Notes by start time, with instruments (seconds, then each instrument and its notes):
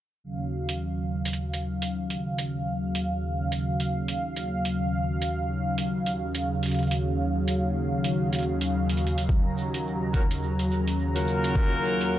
0.24 analog synth pad D#2 C#3 F#3 F5
0.69 closed hi-hat
1.25 closed hi-hat
1.28 closed hi-hat
1.33 closed hi-hat
1.54 closed hi-hat
1.82 closed hi-hat
2.10 closed hi-hat
2.38 closed hi-hat
2.95 closed hi-hat
3.52 closed hi-hat
3.80 closed hi-hat
4.08 closed hi-hat
4.36 closed hi-hat
4.65 closed hi-hat
5.22 closed hi-hat
5.78 closed hi-hat
6.06 closed hi-hat
6.35 closed hi-hat
6.63 closed hi-hat
6.66 closed hi-hat
6.68 closed hi-hat
6.71 closed hi-hat
6.75 closed hi-hat
6.79 closed hi-hat
6.83 closed hi-hat
6.87 closed hi-hat
6.91 closed hi-hat
7.48 closed hi-hat
8.04 closed hi-hat
8.33 closed hi-hat
8.35 closed hi-hat
8.39 closed hi-hat
8.41 closed hi-hat
8.43 closed hi-hat
8.61 closed hi-hat
8.90 closed hi-hat
8.97 closed hi-hat
9.07 closed hi-hat
9.18 closed hi-hat
9.29 analog synth pad A#5, kick, shaker
9.58 shaker
9.74 closed hi-hat, shaker
9.87 shaker
10.14 horn section A#3 C#4 F4 F#4 A#4, kick, shaker
10.31 closed hi-hat, shaker
10.43 shaker
10.59 closed hi-hat
10.71 shaker
10.87 closed hi-hat, shaker
10.99 shaker
11.16 horn section A#3 C#4 F4 F#4 A#4, closed hi-hat
11.27 shaker
11.44 closed hi-hat, shaker
11.55 kick, shaker
11.84 shaker
12.00 closed hi-hat, shaker
12.13 shaker